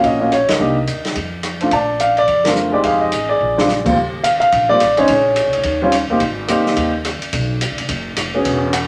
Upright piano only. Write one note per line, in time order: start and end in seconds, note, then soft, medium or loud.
0.00 0.18 A#3 medium
0.00 0.19 C#4 soft
0.00 0.20 F4 medium
0.05 0.21 F#4 medium
0.05 0.33 D#5 medium
0.20 0.30 A#3 medium
0.20 0.31 C#4 soft
0.20 0.31 F4 soft
0.20 0.31 F#4 medium
0.32 0.50 C#5 medium
0.48 1.13 A#4 soft
0.48 1.29 D#5 medium
0.59 0.75 A#3 medium
0.59 0.75 D4 soft
0.59 0.76 D#4 soft
0.59 0.76 G4 medium
1.61 1.71 A3 medium
1.61 1.71 C4 soft
1.61 1.72 D4 soft
1.61 1.72 F4 medium
1.73 2.17 D5 medium
1.73 1.99 A5 medium
2.00 2.16 F5 medium
2.18 2.47 D5 medium
2.44 2.72 A3 medium
2.44 2.71 C4 soft
2.44 2.72 D4 soft
2.44 2.72 F4 medium
2.44 2.74 A#4 medium
2.71 3.09 G#3 medium
2.71 3.10 C4 medium
2.71 3.10 D#4 soft
2.71 3.11 G4 medium
2.71 2.78 D5 medium
2.85 3.29 G#4 medium
2.85 3.01 F5 medium
3.01 3.27 D#5 medium
3.29 3.83 G#4 soft
3.29 3.82 D5 medium
3.57 3.67 G#3 medium
3.57 3.67 C4 medium
3.57 3.68 D4 medium
3.57 3.68 F4 medium
3.84 3.95 D#2 medium
3.84 3.95 G3 medium
3.84 3.95 A#3 soft
3.84 3.96 C4 medium
3.84 3.96 F4 medium
4.24 4.29 F5 loud
4.40 4.67 F5 loud
4.69 4.79 G3 medium
4.69 4.79 A#3 medium
4.69 4.80 C4 soft
4.69 4.80 F4 medium
4.69 4.98 D5 loud
4.97 5.07 G#3 medium
4.97 5.08 C4 medium
4.97 5.08 C#4 medium
4.97 5.08 D#4 medium
4.97 5.62 G#4 medium
4.97 5.78 C#5 medium
5.82 5.92 G3 medium
5.82 5.92 C4 medium
5.82 5.92 C#4 medium
5.82 5.92 F4 medium
6.10 6.20 A#3 medium
6.10 6.20 C4 medium
6.10 6.20 D#4 medium
6.10 6.21 G4 medium
6.48 6.90 A#3 medium
6.48 6.90 C4 medium
6.48 6.91 D#4 medium
6.48 6.91 G4 medium
8.34 8.71 B3 medium
8.34 8.71 C#4 medium
8.34 8.71 F#4 soft
8.34 8.72 G#4 medium
8.73 8.78 F#5 medium